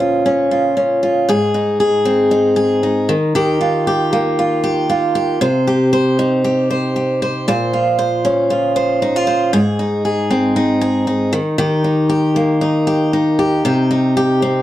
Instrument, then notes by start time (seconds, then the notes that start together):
steel-string acoustic guitar
Already playing: A#2 C#4 C5
0.00 F4
0.26 C#4
0.51 F4
0.77 C#4
1.03 F4
1.29 G#2 G#4
1.54 D#4
1.80 G#4
2.05 C4
2.31 D#4
2.56 G#4
2.83 D#4
3.09 D#3
3.35 D#3 G4
3.61 F4
3.87 G4
4.13 A#3
4.39 F4
4.64 G4
4.90 F4
5.15 G4
5.41 C3 C5
5.67 G4
5.93 C5
6.19 D#4
6.44 G4
6.70 C5
6.96 G4
7.22 C5
7.48 A#2 C5
7.73 F4
7.99 C5
8.25 C#4
8.50 F4
8.76 C5
9.02 D#4
9.16 F4
9.27 C5
9.53 G#2 G#4
9.79 D#4
10.05 G#4
10.31 C4
10.56 D#4
10.81 G#4
11.07 D#4
11.33 D#3
11.58 D#3 G4
11.84 D#4
12.09 G4
12.36 A#3
12.61 D#4
12.87 G4
13.13 D#4
13.39 G4
13.65 C3 G4
13.91 D#4
14.17 G4
14.42 C4